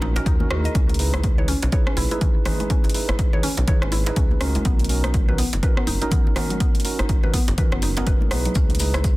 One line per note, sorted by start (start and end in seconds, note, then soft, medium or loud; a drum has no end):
0.00 0.20 A#1 medium
0.00 0.13 C#4 medium
0.00 0.13 D#4 medium
0.00 0.15 D#4 medium
0.00 0.13 F#4 medium
0.00 0.13 A#4 loud
0.00 djembe slap medium
0.00 muted conga soft
0.16 0.37 C#4 medium
0.16 0.37 D#4 medium
0.16 0.37 F#4 medium
0.16 0.21 A#4 loud
0.16 0.37 A#4 medium
0.16 closed hi-hat soft
0.16 djembe slap medium
0.16 djembe tone medium
0.26 0.43 D#2 loud
0.26 0.39 D#4 loud
0.26 kick loud
0.26 closed hi-hat medium
0.40 0.48 C#4 medium
0.40 0.48 D#4 medium
0.40 0.48 F#4 medium
0.40 0.48 A#4 medium
0.40 high conga loud
0.40 djembe tone medium
0.50 0.67 D#2 loud
0.50 0.97 D#4 medium
0.50 0.97 E4 medium
0.50 0.64 F#4 loud
0.50 0.97 G#4 medium
0.50 cross-stick loud
0.64 0.74 D#5 medium
0.64 closed hi-hat soft
0.64 muted conga soft
0.75 1.54 C#2 medium
0.75 0.83 C#4 medium
0.75 kick loud
0.75 closed hi-hat medium
0.75 high conga medium
0.89 closed hi-hat soft
0.89 muted conga medium
0.89 djembe tone medium
0.94 closed hi-hat medium
0.99 1.35 D#4 medium
0.99 1.35 E4 medium
0.99 1.35 G#4 medium
0.99 1.35 B4 medium
0.99 open hi-hat medium
1.13 1.19 E4 medium
1.13 cross-stick medium
1.13 muted conga soft
1.13 high conga loud
1.13 djembe tone medium
1.24 kick loud
1.24 closed hi-hat medium
1.38 1.50 D#4 medium
1.38 1.50 E4 medium
1.38 1.50 G#4 medium
1.38 1.50 B4 medium
1.38 1.47 C#5 medium
1.38 muted conga soft
1.38 djembe tone medium
1.38 low conga medium
1.48 1.61 C#4 loud
1.48 open hi-hat medium
1.62 1.69 B1 loud
1.62 closed hi-hat soft
1.62 djembe slap loud
1.72 2.08 D#4 medium
1.72 2.08 E4 medium
1.72 2.08 G#4 medium
1.72 2.08 B4 loud
1.72 1.80 C#5 medium
1.72 kick loud
1.72 closed hi-hat medium
1.72 muted conga soft
1.72 djembe tone medium
1.87 1.96 C#4 medium
1.87 cross-stick medium
1.87 high conga medium
1.97 2.06 B1 medium
1.97 2.10 E4 loud
1.97 open hi-hat medium
1.97 muted conga medium
1.97 djembe tone medium
1.97 djembe bass medium
2.11 2.43 D#4 medium
2.11 2.17 E4 medium
2.11 2.43 E4 medium
2.11 2.43 G#4 medium
2.11 2.43 B4 medium
2.11 closed hi-hat soft
2.11 high conga medium
2.21 2.35 C#4 medium
2.21 kick loud
2.21 closed hi-hat medium
2.21 muted conga soft
2.21 djembe tone medium
2.21 low conga medium
2.45 2.53 C#4 medium
2.45 2.92 D#4 medium
2.45 2.92 E4 medium
2.45 2.92 G#4 medium
2.45 2.92 B4 loud
2.45 cross-stick medium
2.45 open hi-hat medium
2.45 djembe slap medium
2.45 high conga medium
2.45 low conga loud
2.45 djembe bass medium
2.60 2.69 G#3 medium
2.60 closed hi-hat soft
2.60 muted conga medium
2.60 djembe tone medium
2.70 2.78 C#4 medium
2.70 kick loud
2.70 closed hi-hat medium
2.70 high conga medium
2.84 closed hi-hat soft
2.84 muted conga medium
2.84 djembe tone medium
2.89 closed hi-hat medium
2.94 3.30 D#4 medium
2.94 3.30 E4 medium
2.94 3.30 G#4 medium
2.94 3.30 B4 medium
2.94 open hi-hat medium
3.09 3.14 E4 medium
3.09 cross-stick medium
3.09 closed hi-hat soft
3.09 muted conga soft
3.09 djembe tone medium
3.09 high conga medium
3.09 djembe bass loud
3.19 kick loud
3.19 closed hi-hat medium
3.33 3.45 D#4 medium
3.33 3.45 E4 medium
3.33 3.45 G#4 medium
3.33 3.45 B4 medium
3.33 3.42 C#5 medium
3.33 muted conga medium
3.33 low conga medium
3.43 3.56 C#4 loud
3.43 open hi-hat medium
3.43 djembe tone medium
3.57 3.64 B1 loud
3.57 closed hi-hat soft
3.57 djembe slap medium
3.68 4.03 D#4 medium
3.68 4.03 E4 medium
3.68 4.03 G#4 medium
3.68 4.03 B4 loud
3.68 3.76 C#5 medium
3.68 kick loud
3.68 closed hi-hat medium
3.68 muted conga soft
3.68 djembe tone medium
3.68 low conga loud
3.82 4.10 G#1 medium
3.82 3.92 C#4 medium
3.82 cross-stick medium
3.82 djembe slap medium
3.82 high conga medium
3.92 4.05 E4 loud
3.92 open hi-hat medium
3.92 muted conga medium
3.92 djembe slap medium
3.92 djembe tone medium
4.06 4.38 D#4 medium
4.06 4.38 E4 medium
4.06 4.12 E4 medium
4.06 4.38 G#4 medium
4.06 4.38 B4 loud
4.06 closed hi-hat soft
4.06 djembe slap loud
4.16 4.33 C#2 loud
4.16 4.30 C#4 medium
4.16 kick loud
4.16 closed hi-hat medium
4.16 muted conga soft
4.31 high conga loud
4.31 djembe tone medium
4.41 4.57 C#2 loud
4.41 4.87 C#4 loud
4.41 4.49 C#4 medium
4.41 4.87 D#4 medium
4.41 4.87 F#4 medium
4.41 4.87 A#4 loud
4.41 cross-stick medium
4.41 open hi-hat medium
4.55 4.64 G#3 medium
4.55 closed hi-hat soft
4.55 muted conga soft
4.55 djembe tone medium
4.65 5.44 B1 medium
4.65 4.73 B3 medium
4.65 kick loud
4.65 closed hi-hat medium
4.65 high conga medium
4.79 closed hi-hat soft
4.79 muted conga soft
4.79 djembe tone medium
4.84 closed hi-hat medium
4.89 5.25 C#4 medium
4.89 5.25 D#4 medium
4.89 5.25 F#4 medium
4.89 5.25 A#4 medium
4.89 open hi-hat medium
5.04 5.09 D#4 medium
5.04 cross-stick medium
5.04 closed hi-hat soft
5.04 muted conga soft
5.04 high conga loud
5.14 kick loud
5.14 closed hi-hat medium
5.14 djembe tone medium
5.28 5.41 C#4 medium
5.28 5.41 D#4 medium
5.28 5.41 F#4 medium
5.28 5.41 A#4 medium
5.28 5.37 B4 medium
5.28 muted conga medium
5.28 low conga medium
5.38 5.51 B3 loud
5.38 open hi-hat medium
5.38 djembe tone medium
5.53 5.59 F#1 loud
5.53 closed hi-hat soft
5.53 djembe slap medium
5.63 5.98 C#4 medium
5.63 5.98 D#4 medium
5.63 5.98 F#4 medium
5.63 5.98 A#4 loud
5.63 5.71 B4 medium
5.63 kick loud
5.63 closed hi-hat medium
5.63 muted conga soft
5.63 djembe tone medium
5.77 5.87 B3 medium
5.77 cross-stick medium
5.77 high conga medium
5.87 5.96 F#1 medium
5.87 6.00 D#4 loud
5.87 open hi-hat medium
5.87 muted conga soft
5.87 djembe bass medium
6.02 6.34 C#4 medium
6.02 6.34 D#4 medium
6.02 6.07 D#4 medium
6.02 6.34 F#4 medium
6.02 6.34 A#4 loud
6.02 closed hi-hat soft
6.02 djembe tone medium
6.02 high conga medium
6.11 6.25 B3 medium
6.11 kick loud
6.11 closed hi-hat medium
6.11 muted conga soft
6.11 low conga medium
6.27 djembe tone medium
6.36 6.44 B3 medium
6.36 6.82 C#4 loud
6.36 6.82 D#4 medium
6.36 6.82 F#4 medium
6.36 6.82 A#4 loud
6.36 cross-stick medium
6.36 open hi-hat medium
6.36 djembe slap loud
6.36 high conga medium
6.36 djembe bass loud
6.36 low conga medium
6.50 6.59 F#3 medium
6.50 closed hi-hat soft
6.50 muted conga medium
6.50 djembe tone medium
6.60 6.68 B3 medium
6.60 kick loud
6.60 closed hi-hat medium
6.60 high conga medium
6.75 closed hi-hat soft
6.75 muted conga soft
6.80 closed hi-hat medium
6.84 7.20 C#4 medium
6.84 7.20 D#4 medium
6.84 7.20 F#4 medium
6.84 7.20 A#4 medium
6.84 open hi-hat medium
6.84 djembe tone medium
6.99 7.05 D#4 medium
6.99 cross-stick medium
6.99 closed hi-hat soft
6.99 muted conga soft
6.99 high conga medium
6.99 djembe bass loud
7.09 kick loud
7.09 closed hi-hat medium
7.09 djembe tone medium
7.23 7.36 C#4 medium
7.23 7.36 D#4 medium
7.23 7.36 F#4 medium
7.23 7.36 A#4 medium
7.23 7.32 B4 medium
7.23 muted conga medium
7.23 high conga medium
7.23 low conga loud
7.33 7.47 B3 loud
7.33 kick medium
7.33 open hi-hat medium
7.33 djembe tone medium
7.48 7.54 F#1 loud
7.48 closed hi-hat soft
7.48 djembe slap loud
7.58 7.93 C#4 medium
7.58 7.93 D#4 medium
7.58 7.93 F#4 medium
7.58 7.93 A#4 loud
7.58 7.66 B4 medium
7.58 kick loud
7.58 closed hi-hat medium
7.58 muted conga soft
7.58 low conga loud
7.72 8.01 F#1 medium
7.72 7.82 B3 medium
7.72 cross-stick medium
7.72 djembe slap medium
7.72 high conga medium
7.72 djembe tone medium
7.82 7.90 D#4 medium
7.82 open hi-hat medium
7.82 muted conga medium
7.82 djembe slap medium
7.97 8.06 B3 loud
7.97 8.29 C#4 medium
7.97 8.29 D#4 medium
7.97 8.29 F#4 medium
7.97 8.29 A#4 medium
7.97 closed hi-hat soft
7.97 djembe slap loud
7.97 djembe tone medium
8.07 8.16 F#1 medium
8.07 8.15 B4 medium
8.07 kick loud
8.07 closed hi-hat medium
8.07 muted conga soft
8.21 high conga medium
8.21 djembe tone medium
8.31 8.48 B1 medium
8.31 8.44 B3 medium
8.31 8.77 D#4 medium
8.31 8.77 E4 medium
8.31 8.77 G#4 medium
8.31 8.77 B4 loud
8.31 cross-stick medium
8.31 open hi-hat medium
8.45 8.54 F#3 medium
8.45 closed hi-hat soft
8.45 muted conga medium
8.55 9.17 C#2 loud
8.55 8.63 C#4 medium
8.55 kick loud
8.55 closed hi-hat medium
8.55 high conga medium
8.55 maracas medium
8.70 closed hi-hat soft
8.70 muted conga medium
8.70 djembe tone medium
8.75 closed hi-hat medium
8.79 9.15 D#4 medium
8.79 9.15 E4 medium
8.79 9.15 G#4 medium
8.79 9.15 B4 medium
8.79 open hi-hat medium
8.79 maracas loud
8.94 9.00 E4 medium
8.94 cross-stick medium
8.94 closed hi-hat soft
8.94 muted conga soft
8.94 djembe tone medium
8.94 high conga loud
8.94 maracas soft
9.04 kick loud
9.04 closed hi-hat medium
9.04 maracas soft